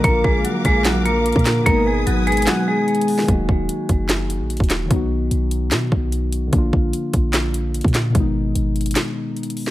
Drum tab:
HH |x-----------------------x-----------x-----------x-----------x-----------x---x---x---x-----------|x-----------------------x-----------x--x--x--x--x-----------------------x---x---x---o-----------|x-----------------------x-----------x-----------x-----------x-----------x---x---x---x-----------|x-----------------------x-----------x-----------x-----------------------x-----------x-----------|
CP |------------------------------------------------x-----------------------------------x-----------|------------------------------------------------x-----------------------------------------------|------------------------------------------------x-----------------------------------x-----------|------------------------------------------------x-----------------------------------------------|
SD |------------------------------------------------o-----------------------------------o-----------|------------------------------------------------o-----------------------------------------o-----|------------------------------------------------o-----------------------------------o-----------|------------------------------------------------o-----------------------------------------------|
BD |o-----------o-----------------------o-----------------------------------------o-----------------|o-----------------------------------------------------------------------------------------------|o-----------o-----------------------o-----------------------------------------o-----------------|o-----------------------------------------------------------o-----------------------------------|

HH |x-----------------------x-----------x-----------x-----------x-----------x---x---x---x-----------|x-----------------------x-----------x--x--x--x--x-----------------------x---x---x---o-----------|
CP |------------------------------------------------x-----------------------------------x-----------|------------------------------------------------x-----------------------------------------------|
SD |------------------------------------------------o-----------------------------------o-----------|------------------------------------------------o-----------------------------------------o-----|
BD |o-----------o-----------------------o-----------------------------------------o-----------------|o-----------------------------------------------------------------------------------------------|